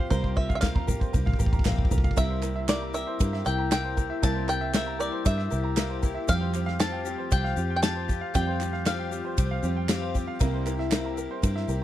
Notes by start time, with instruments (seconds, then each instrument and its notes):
Already playing: felt piano F1 F2 G3 C4, twelve-string acoustic guitar C4 F4 G4, upright piano G4 F5
0.10 felt piano C2 C3 G3 C4 F4 A#4, fingered electric bass C2, twelve-string acoustic guitar C3 G3 A#3 F4 G4, upright piano A#4, five-string banjo C5, kick, floor tom, shaker
0.23 upright piano C5, kick
0.36 twelve-string acoustic guitar A#3 F4 G4, upright piano A#4, five-string banjo E5, kick
0.49 upright piano F5, kick, shaker
0.55 five-string banjo E5
0.61 twelve-string acoustic guitar C3 G3 A#3 F4 G4, upright piano A#4, five-string banjo F5, kick, snare, clap, floor tom, shaker
0.75 upright piano A#5, kick, floor tom
0.87 twelve-string acoustic guitar A#3 F4 G4, upright piano A#4, kick, floor tom, mid tom, shaker
1.00 upright piano C5, kick, shaker
1.13 fingered electric bass C2, twelve-string acoustic guitar G3 A#3 F4 G4, upright piano A#4, kick, floor tom, shaker
1.26 upright piano F5, kick, mid tom
1.33 kick
1.39 fingered electric bass A1, twelve-string acoustic guitar A#3 F4 G4, upright piano A#4, kick, shaker
1.46 kick
1.53 upright piano A#5, kick, floor tom, shaker
1.59 kick
1.65 fingered electric bass A#1, twelve-string acoustic guitar C3 G3 A#3 F4 G4, upright piano A#4, kick, snare, clap, mid tom, shaker
1.72 kick
1.78 kick, floor tom
1.85 kick
1.90 fingered electric bass C2, felt piano G3 C4 F4 A4, twelve-string acoustic guitar A#3 F4 G4, upright piano A#4, kick, floor tom, mid tom, shaker
1.98 kick
2.04 upright piano F5, kick, shaker
2.11 kick
2.16 felt piano C2 C3 G3 A#3 C4 E4 A#4, fingered electric bass C2, twelve-string acoustic guitar C3 G3 A#3 E4 G4, upright piano A#4, five-string banjo E5, glockenspiel E6, kick, ride bell, shaker
2.30 upright piano C5
2.42 twelve-string acoustic guitar A#3 E4 G4, upright piano A#4, clap, shaker
2.56 upright piano E5
2.68 twelve-string acoustic guitar C3 G3 A#3 E4 G4, upright piano A#4, five-string banjo D5, glockenspiel D6, snare, clap, ride bell, shaker
2.82 upright piano A#5
2.94 twelve-string acoustic guitar A#3 E4 G4, upright piano A#4, five-string banjo E5, glockenspiel E6, shaker
3.07 upright piano C5
3.19 fingered electric bass G2, twelve-string acoustic guitar G3 A#3 E4 G4, upright piano A#4, kick, ride bell, shaker
3.33 upright piano E5, snare
3.45 fingered electric bass C2, twelve-string acoustic guitar A#3 E4 G4, upright piano A#4, five-string banjo G5, glockenspiel G6, shaker
3.58 upright piano A#5
3.71 twelve-string acoustic guitar C3 G3 A#3 E4 G4, upright piano A#4, five-string banjo G5, glockenspiel G6, snare, clap, ride bell, shaker
3.84 upright piano C5
3.97 twelve-string acoustic guitar A#3 E4 G4, upright piano A#4, kick, shaker
4.10 upright piano E5
4.22 felt piano C2 C3 G3 A#3 C4 E4 A#4, fingered electric bass C2, twelve-string acoustic guitar C3 G3 A#3 E4 G4, upright piano A#4, five-string banjo A5, glockenspiel A6, kick, ride bell, shaker
4.35 upright piano C5
4.48 twelve-string acoustic guitar A#3 E4 G4, upright piano A#4, five-string banjo G5, glockenspiel G6, clap, shaker
4.61 upright piano E5
4.73 twelve-string acoustic guitar C3 G3 A#3 E4 G4, upright piano A#4, five-string banjo E5, glockenspiel E6, snare, clap, ride bell, shaker
4.86 upright piano A#5
4.99 twelve-string acoustic guitar A#3 E4 G4, upright piano A#4, five-string banjo D5, glockenspiel D6, shaker
5.12 upright piano C5
5.25 fingered electric bass G2, twelve-string acoustic guitar G3 A#3 E4 G4, upright piano A#4, five-string banjo E5, glockenspiel E6, kick, ride bell, shaker
5.38 upright piano E5, snare
5.50 fingered electric bass C2, twelve-string acoustic guitar A#3 E4 G4, upright piano A#4, shaker
5.63 upright piano A#5
5.76 twelve-string acoustic guitar C3 G3 A#3 E4 G4, upright piano A#4, snare, clap, ride bell, shaker
5.89 upright piano C5
6.02 twelve-string acoustic guitar A#3 E4 G4, upright piano A#4, kick, shaker
6.14 upright piano E5
6.28 felt piano F1 F2 F3 G3 C4 G4 C5, fingered electric bass F2, twelve-string acoustic guitar F3 C4 F4 G4, upright piano G4, five-string banjo F5, glockenspiel F6, kick, ride bell, shaker
6.41 upright piano C5
6.53 twelve-string acoustic guitar C4 F4 G4, upright piano G4, clap, shaker
6.66 upright piano F5, snare
6.79 twelve-string acoustic guitar F3 C4 F4 G4, upright piano G4, five-string banjo A5, glockenspiel A6, snare, clap, ride bell, shaker
6.92 upright piano G5
7.05 twelve-string acoustic guitar C4 F4 G4, upright piano G4, shaker
7.18 upright piano C5
7.30 fingered electric bass C2, twelve-string acoustic guitar F3 C4 F4 G4, upright piano G4, five-string banjo G5, glockenspiel G6, kick, ride bell, shaker
7.44 upright piano F5, snare
7.56 fingered electric bass F2, twelve-string acoustic guitar C4 F4 G4, upright piano G4, shaker
7.70 upright piano G5
7.76 five-string banjo G5, glockenspiel G6
7.83 twelve-string acoustic guitar F3 C4 F4 G4, upright piano G4, five-string banjo A5, glockenspiel A6, snare, clap, ride bell, shaker
7.95 upright piano C5
8.08 twelve-string acoustic guitar C4 F4 G4, upright piano G4, kick, shaker
8.21 upright piano F5
8.34 felt piano F1 F2 F3 G3 C4 G4 D5, fingered electric bass F2, twelve-string acoustic guitar F3 C4 F4 G4, upright piano G4, five-string banjo G5, glockenspiel G6, kick, ride bell, shaker
8.47 upright piano C5
8.60 twelve-string acoustic guitar C4 F4 G4, upright piano G4, clap, shaker
8.73 upright piano F5, snare
8.86 twelve-string acoustic guitar F3 C4 F4 G4, upright piano G4, five-string banjo F5, glockenspiel F6, snare, clap, ride bell, shaker
8.99 upright piano G5
9.11 twelve-string acoustic guitar C4 F4 G4, upright piano G4, shaker
9.25 upright piano C5
9.37 fingered electric bass C2, twelve-string acoustic guitar F3 C4 F4 G4, upright piano G4, kick, ride bell, shaker
9.51 upright piano F5
9.63 fingered electric bass F2, felt piano F3 G3 C4 G4 C5, twelve-string acoustic guitar C4 F4 G4, upright piano G4, shaker
9.76 upright piano G5
9.88 twelve-string acoustic guitar F3 C4 F4 G4, upright piano G4, snare, clap, ride bell, shaker
10.02 upright piano C5
10.14 twelve-string acoustic guitar C4 F4 G4, upright piano G4, kick, shaker
10.27 upright piano F5
10.39 fingered electric bass C2, felt piano C2 C3 G3 A#3 C4 E4 A#4, twelve-string acoustic guitar C3 G3 A#3 E4 G4, upright piano A#4, kick, ride bell, shaker
10.54 upright piano C5
10.66 twelve-string acoustic guitar A#3 E4 G4, upright piano A#4, clap, shaker
10.79 upright piano E5, snare
10.90 twelve-string acoustic guitar C3 G3 A#3 E4 G4, upright piano A#4, snare, clap, ride bell, shaker
11.05 upright piano A#5
11.17 twelve-string acoustic guitar A#3 E4 G4, upright piano A#4, shaker
11.31 upright piano C5
11.42 fingered electric bass G2, twelve-string acoustic guitar G3 A#3 E4 G4, upright piano A#4, kick, ride bell, shaker
11.55 upright piano E5, snare
11.68 fingered electric bass C2, twelve-string acoustic guitar A#3 E4 G4, upright piano A#4, shaker